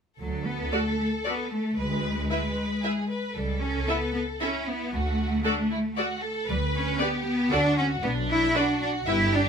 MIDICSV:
0, 0, Header, 1, 6, 480
1, 0, Start_track
1, 0, Key_signature, 2, "major"
1, 0, Tempo, 528169
1, 184, Time_signature, 3, 2, 24, 8
1, 2582, Tempo, 519931
1, 8717, End_track
2, 0, Start_track
2, 0, Title_t, "Violin section"
2, 0, Program_c, 0, 48
2, 662, Note_on_c, 0, 74, 29
2, 734, Note_off_c, 0, 74, 0
2, 1134, Note_on_c, 0, 74, 31
2, 1207, Note_off_c, 0, 74, 0
2, 2104, Note_on_c, 0, 76, 28
2, 2177, Note_off_c, 0, 76, 0
2, 2577, Note_on_c, 0, 76, 30
2, 2651, Note_off_c, 0, 76, 0
2, 3540, Note_on_c, 0, 76, 28
2, 3614, Note_off_c, 0, 76, 0
2, 4032, Note_on_c, 0, 76, 36
2, 4106, Note_off_c, 0, 76, 0
2, 4999, Note_on_c, 0, 74, 34
2, 5072, Note_off_c, 0, 74, 0
2, 5473, Note_on_c, 0, 74, 40
2, 5547, Note_off_c, 0, 74, 0
2, 6411, Note_on_c, 0, 74, 42
2, 6484, Note_off_c, 0, 74, 0
2, 6903, Note_on_c, 0, 74, 43
2, 6977, Note_off_c, 0, 74, 0
2, 7865, Note_on_c, 0, 74, 42
2, 7939, Note_off_c, 0, 74, 0
2, 8333, Note_on_c, 0, 76, 47
2, 8407, Note_off_c, 0, 76, 0
2, 8717, End_track
3, 0, Start_track
3, 0, Title_t, "Viola section"
3, 0, Program_c, 1, 48
3, 664, Note_on_c, 1, 69, 31
3, 667, Note_on_c, 1, 66, 31
3, 737, Note_off_c, 1, 69, 0
3, 740, Note_off_c, 1, 66, 0
3, 1140, Note_on_c, 1, 66, 28
3, 1141, Note_on_c, 1, 69, 27
3, 1213, Note_off_c, 1, 66, 0
3, 1214, Note_off_c, 1, 69, 0
3, 2099, Note_on_c, 1, 71, 31
3, 2100, Note_on_c, 1, 64, 36
3, 2172, Note_off_c, 1, 64, 0
3, 2172, Note_off_c, 1, 71, 0
3, 2581, Note_on_c, 1, 71, 29
3, 2583, Note_on_c, 1, 64, 29
3, 2655, Note_off_c, 1, 71, 0
3, 2657, Note_off_c, 1, 64, 0
3, 3546, Note_on_c, 1, 64, 35
3, 3546, Note_on_c, 1, 69, 37
3, 3620, Note_off_c, 1, 64, 0
3, 3620, Note_off_c, 1, 69, 0
3, 4032, Note_on_c, 1, 64, 33
3, 4032, Note_on_c, 1, 69, 34
3, 4106, Note_off_c, 1, 64, 0
3, 4106, Note_off_c, 1, 69, 0
3, 4991, Note_on_c, 1, 66, 41
3, 4994, Note_on_c, 1, 69, 44
3, 5064, Note_off_c, 1, 66, 0
3, 5068, Note_off_c, 1, 69, 0
3, 5476, Note_on_c, 1, 69, 33
3, 5477, Note_on_c, 1, 66, 34
3, 5550, Note_off_c, 1, 69, 0
3, 5551, Note_off_c, 1, 66, 0
3, 6421, Note_on_c, 1, 71, 43
3, 6427, Note_on_c, 1, 67, 45
3, 6495, Note_off_c, 1, 71, 0
3, 6501, Note_off_c, 1, 67, 0
3, 6896, Note_on_c, 1, 66, 35
3, 6897, Note_on_c, 1, 69, 38
3, 6970, Note_off_c, 1, 66, 0
3, 6970, Note_off_c, 1, 69, 0
3, 7854, Note_on_c, 1, 66, 44
3, 7856, Note_on_c, 1, 71, 52
3, 7928, Note_off_c, 1, 66, 0
3, 7929, Note_off_c, 1, 71, 0
3, 8337, Note_on_c, 1, 64, 38
3, 8339, Note_on_c, 1, 71, 35
3, 8411, Note_off_c, 1, 64, 0
3, 8413, Note_off_c, 1, 71, 0
3, 8717, End_track
4, 0, Start_track
4, 0, Title_t, "Violin section"
4, 0, Program_c, 2, 48
4, 172, Note_on_c, 2, 69, 44
4, 1581, Note_off_c, 2, 69, 0
4, 1614, Note_on_c, 2, 71, 43
4, 2090, Note_off_c, 2, 71, 0
4, 2101, Note_on_c, 2, 71, 39
4, 2571, Note_off_c, 2, 71, 0
4, 2571, Note_on_c, 2, 68, 40
4, 2814, Note_on_c, 2, 71, 39
4, 2817, Note_off_c, 2, 68, 0
4, 3049, Note_on_c, 2, 69, 44
4, 3053, Note_off_c, 2, 71, 0
4, 4018, Note_off_c, 2, 69, 0
4, 4026, Note_on_c, 2, 64, 37
4, 4506, Note_on_c, 2, 66, 42
4, 4509, Note_off_c, 2, 64, 0
4, 4980, Note_off_c, 2, 66, 0
4, 4982, Note_on_c, 2, 62, 38
4, 5221, Note_off_c, 2, 62, 0
4, 5222, Note_on_c, 2, 64, 43
4, 5296, Note_off_c, 2, 64, 0
4, 5455, Note_on_c, 2, 66, 46
4, 5692, Note_on_c, 2, 69, 51
4, 5696, Note_off_c, 2, 66, 0
4, 5935, Note_on_c, 2, 71, 50
4, 5939, Note_off_c, 2, 69, 0
4, 6417, Note_off_c, 2, 71, 0
4, 6431, Note_on_c, 2, 67, 46
4, 6895, Note_on_c, 2, 66, 52
4, 6903, Note_off_c, 2, 67, 0
4, 7376, Note_off_c, 2, 66, 0
4, 7377, Note_on_c, 2, 62, 55
4, 7852, Note_on_c, 2, 66, 49
4, 7857, Note_off_c, 2, 62, 0
4, 8326, Note_off_c, 2, 66, 0
4, 8346, Note_on_c, 2, 67, 56
4, 8717, Note_off_c, 2, 67, 0
4, 8717, End_track
5, 0, Start_track
5, 0, Title_t, "Cello section"
5, 0, Program_c, 3, 48
5, 186, Note_on_c, 3, 54, 46
5, 410, Note_off_c, 3, 54, 0
5, 427, Note_on_c, 3, 59, 46
5, 666, Note_on_c, 3, 57, 41
5, 667, Note_off_c, 3, 59, 0
5, 897, Note_off_c, 3, 57, 0
5, 908, Note_on_c, 3, 57, 36
5, 980, Note_off_c, 3, 57, 0
5, 1146, Note_on_c, 3, 59, 47
5, 1380, Note_off_c, 3, 59, 0
5, 1383, Note_on_c, 3, 57, 42
5, 1618, Note_off_c, 3, 57, 0
5, 1621, Note_on_c, 3, 56, 47
5, 2821, Note_off_c, 3, 56, 0
5, 3062, Note_on_c, 3, 55, 43
5, 3286, Note_off_c, 3, 55, 0
5, 3302, Note_on_c, 3, 61, 47
5, 3543, Note_off_c, 3, 61, 0
5, 3544, Note_on_c, 3, 59, 52
5, 3773, Note_off_c, 3, 59, 0
5, 3784, Note_on_c, 3, 59, 45
5, 3858, Note_off_c, 3, 59, 0
5, 4029, Note_on_c, 3, 61, 46
5, 4264, Note_off_c, 3, 61, 0
5, 4272, Note_on_c, 3, 59, 50
5, 4512, Note_off_c, 3, 59, 0
5, 4513, Note_on_c, 3, 57, 54
5, 5710, Note_off_c, 3, 57, 0
5, 5951, Note_on_c, 3, 55, 60
5, 6025, Note_off_c, 3, 55, 0
5, 6189, Note_on_c, 3, 61, 55
5, 6420, Note_off_c, 3, 61, 0
5, 6420, Note_on_c, 3, 59, 53
5, 6648, Note_off_c, 3, 59, 0
5, 6659, Note_on_c, 3, 59, 61
5, 6894, Note_off_c, 3, 59, 0
5, 6902, Note_on_c, 3, 62, 69
5, 7136, Note_on_c, 3, 61, 61
5, 7140, Note_off_c, 3, 62, 0
5, 7210, Note_off_c, 3, 61, 0
5, 7379, Note_on_c, 3, 59, 66
5, 7452, Note_off_c, 3, 59, 0
5, 7619, Note_on_c, 3, 64, 66
5, 7853, Note_off_c, 3, 64, 0
5, 7859, Note_on_c, 3, 62, 61
5, 8088, Note_off_c, 3, 62, 0
5, 8099, Note_on_c, 3, 62, 64
5, 8173, Note_off_c, 3, 62, 0
5, 8339, Note_on_c, 3, 64, 72
5, 8575, Note_off_c, 3, 64, 0
5, 8582, Note_on_c, 3, 62, 63
5, 8717, Note_off_c, 3, 62, 0
5, 8717, End_track
6, 0, Start_track
6, 0, Title_t, "Double bass section"
6, 0, Program_c, 4, 48
6, 177, Note_on_c, 4, 38, 31
6, 583, Note_off_c, 4, 38, 0
6, 1615, Note_on_c, 4, 38, 39
6, 2019, Note_off_c, 4, 38, 0
6, 3063, Note_on_c, 4, 37, 37
6, 3463, Note_off_c, 4, 37, 0
6, 4514, Note_on_c, 4, 38, 40
6, 4913, Note_off_c, 4, 38, 0
6, 5940, Note_on_c, 4, 38, 44
6, 6341, Note_off_c, 4, 38, 0
6, 6905, Note_on_c, 4, 38, 49
6, 7301, Note_off_c, 4, 38, 0
6, 7377, Note_on_c, 4, 35, 50
6, 7777, Note_off_c, 4, 35, 0
6, 8336, Note_on_c, 4, 31, 51
6, 8717, Note_off_c, 4, 31, 0
6, 8717, End_track
0, 0, End_of_file